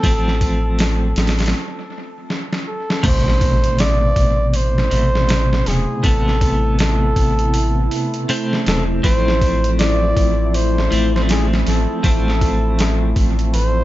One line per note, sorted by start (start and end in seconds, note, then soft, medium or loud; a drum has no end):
0.00 1.13 A1 loud
0.00 1.53 F3 medium
0.00 2.30 A4 loud
0.00 kick loud
0.00 open hi-hat medium
0.05 1.54 A3 medium
0.05 1.55 C4 medium
0.28 snare soft
0.41 kick medium
0.41 open hi-hat medium
0.79 snare loud
0.79 open hi-hat medium
1.16 1.54 A1 medium
1.16 snare medium
1.16 open hi-hat medium
1.27 snare medium
1.27 open hi-hat medium
1.39 snare medium
1.39 open hi-hat medium
1.46 snare medium
1.46 open hi-hat medium
2.30 snare medium
2.53 snare medium
2.68 3.07 A4 medium
2.90 snare medium
3.03 4.13 A1 loud
3.03 4.89 B2 loud
3.03 4.87 C3 medium
3.03 13.84 A3 medium
3.03 4.88 A3 medium
3.03 13.84 E4 medium
3.03 3.82 C5 loud
3.03 kick loud
3.03 open hi-hat medium
3.03 crash medium
3.03 impact medium
3.28 snare medium
3.41 kick medium
3.41 open hi-hat medium
3.64 closed hi-hat soft
3.78 4.50 D5 loud
3.78 snare loud
3.78 open hi-hat medium
4.16 4.88 A1 medium
4.16 kick medium
4.16 open hi-hat medium
4.50 4.57 D5 medium
4.50 open hi-hat medium
4.56 5.69 C5 loud
4.78 snare soft
4.90 5.64 A1 loud
4.90 6.01 B2 loud
4.90 6.00 C3 loud
4.90 6.01 A3 medium
4.90 open hi-hat medium
5.15 snare soft
5.29 snare loud
5.29 open hi-hat medium
5.53 snare medium
5.66 5.86 E1 medium
5.66 6.07 G#4 medium
5.66 snare soft
5.66 open hi-hat medium
6.03 7.13 A1 loud
6.03 8.25 C3 medium
6.03 8.25 A3 medium
6.03 8.26 B3 medium
6.03 6.80 A4 loud
6.03 kick loud
6.03 open hi-hat medium
6.28 snare soft
6.41 kick loud
6.41 open hi-hat medium
6.79 8.25 A4 loud
6.79 snare loud
6.79 open hi-hat medium
7.16 7.88 A1 medium
7.16 kick medium
7.16 open hi-hat medium
7.39 closed hi-hat soft
7.54 open hi-hat medium
7.91 open hi-hat medium
8.14 closed hi-hat soft
8.29 9.00 C3 medium
8.29 9.01 A3 medium
8.29 9.01 C4 loud
8.29 open hi-hat medium
8.53 snare medium
8.66 9.00 E1 medium
8.66 8.84 A4 medium
8.66 snare loud
8.66 open hi-hat medium
9.03 10.13 A1 loud
9.03 10.87 F3 medium
9.03 10.88 A3 medium
9.03 10.89 C4 loud
9.03 9.75 C5 loud
9.03 kick loud
9.03 open hi-hat medium
9.28 snare medium
9.41 kick loud
9.41 open hi-hat medium
9.64 closed hi-hat soft
9.79 10.49 D5 loud
9.79 snare loud
9.79 open hi-hat medium
10.17 10.89 A1 medium
10.17 kick loud
10.17 open hi-hat medium
10.49 10.57 D5 medium
10.54 11.14 C5 loud
10.54 open hi-hat medium
10.78 snare medium
10.91 11.64 A1 medium
10.91 12.00 F3 medium
10.91 12.01 A3 medium
10.91 12.01 C4 loud
10.91 open hi-hat medium
11.16 11.22 C5 medium
11.16 snare soft
11.29 11.47 G#4 medium
11.29 snare loud
11.29 open hi-hat medium
11.53 snare medium
11.67 11.86 A1 loud
11.67 12.02 A4 medium
11.67 snare soft
11.67 open hi-hat medium
12.03 13.14 A1 medium
12.03 13.84 F3 medium
12.03 13.84 A3 medium
12.03 13.84 C4 medium
12.03 13.13 A4 loud
12.03 kick loud
12.03 open hi-hat medium
12.28 snare soft
12.41 kick medium
12.41 open hi-hat medium
12.79 snare loud
12.79 open hi-hat medium
13.16 13.54 A1 medium
13.16 kick loud
13.16 open hi-hat medium
13.39 closed hi-hat soft
13.54 13.84 A1 loud
13.54 13.84 C5 loud
13.54 open hi-hat medium